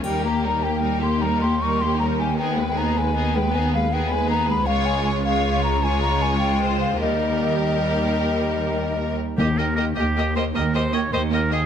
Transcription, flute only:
\new Staff \with { instrumentName = "Flute" } { \time 12/8 \key ees \mixolydian \tempo 4. = 103 g''8 bes''8 bes''8 g''4 c'''8 bes''8 c'''8 des'''8 c'''8 bes''8 aes''8 | g''8. g''16 bes''8 aes''4 g''8 aes''8 f''8 g''8 aes''8 bes''8 ces'''8 | f''8 aes''8 aes''8 f''4 bes''8 aes''8 bes''8 aes''8 g''4 f''8 | ees''1~ ees''4. r8 |
r1. | }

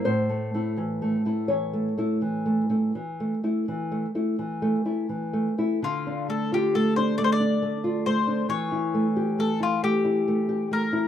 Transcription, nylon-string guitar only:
\new Staff \with { instrumentName = "Nylon-string guitar" } { \time 12/8 \key d \minor \tempo 4. = 43 << { c''4. cis''2. r4. | r1. | } \\ { a,16 a16 <a e'>16 e16 a16 <a e'>16 e16 a16 <a e'>16 e16 a16 <a e'>16 e16 a16 <a e'>16 e16 a16 <a e'>16 e16 a16 <a e'>16 e16 a16 <a e'>16 | d16 d'16 a16 f'16 a16 d'16 a16 d'16 a16 f'16 a16 d'16 e16 e'16 a16 g'16 a16 e'16 a16 e'16 a16 g'16 a16 e'16 | } >> }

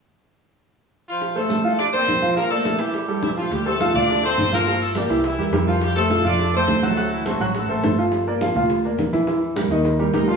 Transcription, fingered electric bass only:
\new Staff \with { instrumentName = "Fingered electric bass" } { \clef bass \time 4/4 \key d \minor \tempo 4 = 208 r1 | r1 | r1 | d,4. d,4. g,,4~ |
g,,4. c,4 e,8 f,4~ | f,4. f,4. d,4~ | d,4. a,,4 a,,8 g,,4~ | g,,4. d,4. e,4~ |
e,4. ees,4. d,4 | }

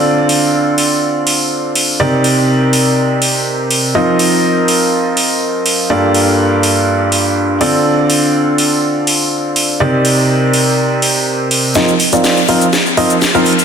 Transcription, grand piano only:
\new Staff \with { instrumentName = "Grand piano" } { \time 4/4 \key c \dorian \tempo 4 = 123 <d c' d' f' a' d''>1 | <c c' ees' g' bes' d''>1 | <f c' ees' f' bes' ees''>1 | <g, bes f' g' a' d''>2.~ <g, bes f' g' a' d''>8 <d c' d' f' a' d''>8~ |
<d c' d' f' a' d''>1 | <c c' ees' g' bes' d''>1 | <f c' ees' f' bes' ees''>16 r8 <f c' ees' f' bes' d''>8 r16 <f c' ees' f' bes' f''>16 r8. <f c' ees' f' bes' ees''>16 r8 <f c' ees' f' bes' f''>16 r8 | }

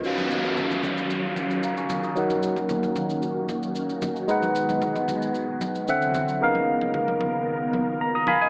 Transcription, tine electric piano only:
\new Staff \with { instrumentName = "Tine electric piano" } { \time 4/4 \key ees \minor \tempo 4 = 113 << { r2. <f'' bes''>16 <aes'' des'''>8 <bes'' ees'''>16~ | <bes'' ees'''>16 r2. r8. | r1 | r2. bes''16 <bes'' ees'''>16 <f'' aes'' ces'''>16 <ees'' aes''>16 | } \\ { <ees des' ges' f''>1 | <ges ees' bes' ges''>1 | <aes ees' ces'' ges''>2. <d c' e'' fis''>4 | <des ces' ees' bes' f''>1 | } >> }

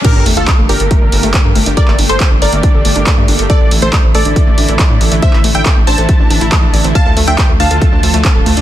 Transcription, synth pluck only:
\new Staff \with { instrumentName = "Synth pluck" } { \time 4/4 \key g \dorian \tempo 4 = 139 <g' bes'>8 r16 <f' a'>8 r16 <g' bes'>2~ <g' bes'>16 r16 | <bes' d''>8 r16 <a' c''>8 r16 <bes' d''>2~ <bes' d''>16 r16 | <a' d''>8 r16 <a' c''>8 r16 <a' d''>2~ <a' d''>16 r16 | <c'' e''>8 r16 <e'' g''>8 r16 <c'' a''>2~ <c'' a''>16 r16 |
<f'' a''>8 r16 <e'' g''>8 r16 <f'' a''>2~ <f'' a''>16 r16 | }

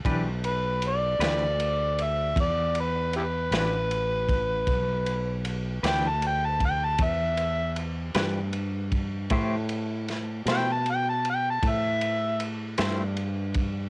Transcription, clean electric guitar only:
\new Staff \with { instrumentName = "Clean electric guitar" } { \time 12/8 \key e \minor \tempo 4. = 52 <e d' g' b'>8 r4 <e d' g' b'>8 r2 r8 <e d' g' b'>8 r4 | r4. <e d' g' b'>8 r2 r8 <e d' g' b'>8 r4 | <a e' g' c''>8 r4 <a e' g' c''>8 r2 r8 <a e' g' c''>8 r4 | }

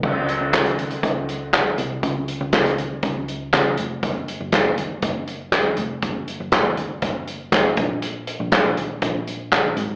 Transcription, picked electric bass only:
\new Staff \with { instrumentName = "Picked electric bass" } { \clef bass \time 4/4 \key des \major \tempo 4 = 120 des,8. des,16 des,4 des,4. c,8 | des,8. des,16 des,4 des,4 des,8 f,,8 | ges,,8. ges,,16 ges,,4 ges,,4. f,,8 | ges,,8. ges,,16 ges,,4 ges,,4 ges,,8 bes,,8~ |
bes,,8. bes,,16 bes,,4 bes,,4. aes,,8 | }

